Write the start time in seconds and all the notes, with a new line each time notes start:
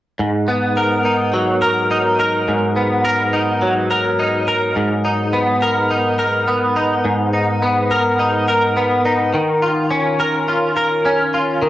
0.19 G#2
0.48 B3
0.77 A#4
1.05 D#4
1.34 F#3
1.62 A#4
1.91 D#4
2.20 A#4
2.48 G#2
2.76 B3
3.05 A#4
3.33 D#4
3.62 F#3
3.91 A#4
4.19 D#4
4.48 A#4
4.76 G#2
5.05 D#4
5.33 B3
5.62 A#4
5.91 D#4
6.19 A#4
6.48 B3
6.76 D#4
7.05 G#2
7.33 D#4
7.62 B3
7.91 A#4
8.19 D#4
8.48 A#4
8.77 B3
9.05 D#4
9.34 D#3
9.62 F4
9.91 C#4
10.20 A#4
10.48 F4
10.77 A#4
11.05 C#4
11.34 F4
11.62 D#3